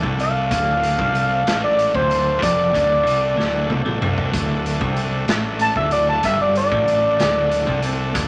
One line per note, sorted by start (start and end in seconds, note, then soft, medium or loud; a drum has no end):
0.00 0.48 C2 loud
0.00 0.50 C3 loud
0.00 8.28 A3 medium
0.00 8.28 D4 medium
0.00 8.28 F#4 medium
0.00 8.28 A4 medium
0.00 kick medium
0.20 1.59 F5 medium
0.20 closed hi-hat medium
0.51 0.96 D1 medium
0.51 0.98 D2 loud
0.51 kick loud
0.51 closed hi-hat medium
0.83 closed hi-hat medium
0.99 1.44 C2 loud
0.99 1.46 C3 loud
0.99 kick loud
1.15 closed hi-hat medium
1.46 1.91 A1 medium
1.46 1.94 A2 medium
1.46 snare loud
1.46 closed hi-hat medium
1.64 1.94 D5 loud
1.79 closed hi-hat medium
1.94 2.39 D1 medium
1.94 2.41 D2 loud
1.94 2.41 C5 medium
1.94 kick medium
2.11 closed hi-hat medium
2.42 2.72 F1 medium
2.42 2.73 F2 medium
2.42 3.66 D5 loud
2.42 kick loud
2.42 closed hi-hat loud
2.73 3.04 D1 medium
2.73 3.04 D2 loud
2.73 kick loud
2.73 closed hi-hat medium
3.05 3.36 C2 medium
3.05 3.36 C3 medium
3.05 closed hi-hat medium
3.36 3.68 D1 medium
3.36 3.68 D2 medium
3.36 snare medium
3.69 3.85 C2 loud
3.69 3.84 C3 loud
3.69 high tom medium
3.85 4.01 A1 medium
3.85 4.00 A2 medium
3.85 mid tom medium
4.01 4.31 C2 medium
4.01 4.32 C3 loud
4.01 mid tom loud
4.18 floor tom medium
4.33 4.78 D1 medium
4.33 4.80 D2 loud
4.33 kick loud
4.33 closed hi-hat medium
4.66 closed hi-hat medium
4.81 5.25 C2 medium
4.81 5.27 C3 loud
4.81 kick loud
4.96 closed hi-hat medium
5.28 5.73 A1 medium
5.28 5.75 A2 medium
5.28 snare loud
5.28 closed hi-hat medium
5.59 5.76 A5 loud
5.59 closed hi-hat medium
5.76 6.21 D1 loud
5.76 6.23 D2 medium
5.76 5.92 E5 medium
5.76 kick medium
5.91 6.07 D5 medium
5.91 closed hi-hat medium
6.09 6.24 A5 medium
6.23 6.69 G1 medium
6.23 6.71 G2 loud
6.23 6.40 E5 loud
6.23 kick medium
6.23 closed hi-hat medium
6.42 6.56 D5 medium
6.55 7.80 D5 loud
6.55 closed hi-hat medium
6.72 7.16 A1 medium
6.72 7.19 A2 loud
6.72 kick loud
6.88 closed hi-hat medium
7.19 7.64 D1 medium
7.19 7.66 D2 loud
7.19 snare loud
7.19 closed hi-hat medium
7.51 closed hi-hat medium
7.67 8.12 C2 medium
7.67 8.14 C3 medium
7.67 kick medium
7.83 closed hi-hat medium
8.14 8.28 D1 medium
8.14 8.28 D2 medium
8.14 kick loud
8.14 closed hi-hat loud